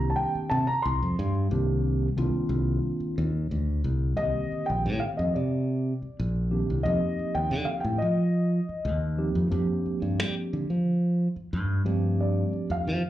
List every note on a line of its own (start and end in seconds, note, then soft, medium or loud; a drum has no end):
0.00 0.13 C2 medium
0.00 0.63 D#3 medium
0.00 0.63 A#3 medium
0.00 0.63 C4 medium
0.00 0.63 D4 medium
0.00 0.63 G4 medium
0.00 0.11 A#5 medium
0.10 0.17 A5 medium
0.16 0.51 G5 medium
0.35 muted fingered electric bass stroke soft
0.50 0.65 C3 medium
0.50 0.68 A5 medium
0.67 0.84 A#5 medium
0.67 muted fingered electric bass stroke soft
0.82 0.99 C2 medium
0.82 1.30 C6 medium
1.02 1.16 F2 medium
1.19 1.47 G2 loud
1.51 2.08 C2 medium
1.51 2.07 D#3 medium
1.51 2.07 A#3 medium
1.51 2.07 C4 medium
1.51 2.07 D4 medium
1.51 2.07 G4 medium
2.17 2.32 C2 medium
2.17 3.29 D#3 medium
2.17 3.29 A#3 medium
2.17 3.29 C4 medium
2.17 3.29 D4 medium
2.17 3.30 F4 medium
2.34 muted fingered electric bass stroke soft
2.49 2.78 C2 medium
3.00 muted fingered electric bass stroke soft
3.18 3.48 D#2 medium
3.51 3.81 D2 medium
3.84 4.14 C2 medium
4.16 4.32 C2 medium
4.16 5.29 D3 medium
4.16 5.29 D#3 medium
4.16 5.29 A#3 medium
4.16 5.29 C4 medium
4.16 5.29 G4 medium
4.16 4.64 D#5 medium
4.52 muted fingered electric bass stroke soft
4.66 4.87 A#1 medium
4.66 5.01 G5 medium
4.86 5.00 A2 medium
5.00 5.05 F5 medium
5.17 5.33 F2 medium
5.17 5.35 D#5 medium
5.34 5.92 C3 medium
5.34 6.31 D5 medium
6.02 muted fingered electric bass stroke soft
6.20 6.62 A#1 medium
6.50 6.79 D#3 medium
6.50 6.79 A#3 medium
6.50 6.79 C4 medium
6.50 6.80 D4 medium
6.50 6.79 G4 medium
6.70 6.83 C2 medium
6.83 7.00 F2 medium
6.83 7.97 F3 medium
6.83 7.97 A#3 medium
6.83 7.97 C4 medium
6.83 7.97 D#4 medium
6.83 7.98 G4 medium
6.83 7.36 D#5 medium
7.19 muted fingered electric bass stroke soft
7.35 7.53 D#2 medium
7.35 7.66 G5 medium
7.51 7.66 D3 medium
7.65 7.82 F5 medium
7.80 8.00 G5 medium
7.84 7.99 A2 medium
7.98 8.59 F3 medium
7.98 8.97 D#5 medium
8.69 muted fingered electric bass stroke soft
8.85 9.28 D#2 medium
9.17 9.46 F3 medium
9.17 9.46 A#3 medium
9.17 9.47 C4 medium
9.17 9.47 D#4 medium
9.17 9.47 G4 medium
9.35 9.50 F2 medium
9.50 9.66 F2 medium
9.50 10.63 F3 medium
9.50 10.63 A#3 medium
9.50 10.64 C4 medium
9.50 10.64 D4 medium
9.50 10.64 G4 medium
9.86 muted fingered electric bass stroke soft
10.02 10.20 G2 medium
10.20 10.34 G3 medium
10.53 10.67 D3 medium
10.70 11.27 F3 medium
11.36 muted fingered electric bass stroke soft
11.53 11.81 G2 medium
11.85 12.43 G2 medium
11.85 12.98 F3 medium
11.85 12.97 A3 medium
11.85 12.98 C4 medium
11.85 12.98 D4 medium
11.85 12.98 G4 medium
12.21 12.67 D5 medium
12.53 muted fingered electric bass stroke soft
12.70 12.89 F2 medium
12.70 13.10 F5 medium
12.87 13.02 F3 medium